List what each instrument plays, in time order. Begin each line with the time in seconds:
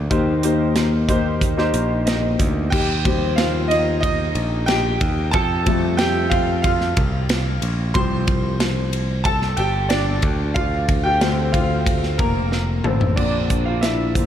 Already playing: grand piano A#3 D4 G4 D5
0.10 picked electric bass D#2, grand piano D#3 A#3 D#4 G4 C5, kick, closed hi-hat
0.43 grand piano A#3 D#4 G4 C5, closed hi-hat
0.76 snare, closed hi-hat
1.08 grand piano A#3 D#4 G4 C5, kick, closed hi-hat
1.41 kick, closed hi-hat
1.57 grand piano A#3 D#4 G4 C5, snare
1.74 picked electric bass A#1, closed hi-hat
2.05 grand piano D#4 D#5, snare, closed hi-hat
2.39 picked electric bass D2, kick, closed hi-hat
2.70 picked electric bass D#2, grand piano G4 G5, kick, crash
3.05 grand piano F3 G3 C4, kick, ride
3.36 grand piano F4 F5, snare, ride
3.68 grand piano D#4 D#5, ride
4.00 grand piano D#4 D#5, kick, ride
4.35 picked electric bass A#1, ride
4.66 grand piano G4 G5, snare, ride
5.01 picked electric bass D#2, kick, ride
5.31 picked electric bass F2, grand piano A4 A5, kick, ride
5.66 grand piano F3 G3 A3, kick, ride
5.97 grand piano G4 G5, snare, ride
6.30 grand piano F4 F5, kick, ride
6.62 grand piano F4 F5, kick, ride
6.81 snare
6.97 picked electric bass C2, kick, ride
7.29 snare, ride
7.62 picked electric bass A#1, ride
7.94 picked electric bass C2, grand piano F3 G3 C4 C5 C6, kick, ride
8.28 kick, ride
8.60 snare, ride
8.93 ride
9.24 grand piano A4 A5, kick, ride
9.42 snare
9.57 picked electric bass G1, grand piano G4 G5, ride
9.89 grand piano D4 D5, snare, ride
10.22 picked electric bass D2, kick, ride
10.54 grand piano F4 F5, kick, ride
10.89 kick, ride
11.04 grand piano G4 G5
11.21 grand piano D3 A3 C4, snare, ride
11.52 grand piano F4 F5, kick, ride
11.86 kick, ride
12.03 snare
12.18 picked electric bass F1, grand piano A#3 A#4, kick, ride
12.52 snare
12.84 picked electric bass A1, grand piano D3 C4 A4, mid tom
13.01 floor tom
13.16 picked electric bass A#1, grand piano D3 A#3 C4 D4 D5, kick, crash
13.50 kick, closed hi-hat
13.66 grand piano F4 F5
13.81 grand piano E4 E5, snare, closed hi-hat
14.14 grand piano D3 A#3 C4, kick, closed hi-hat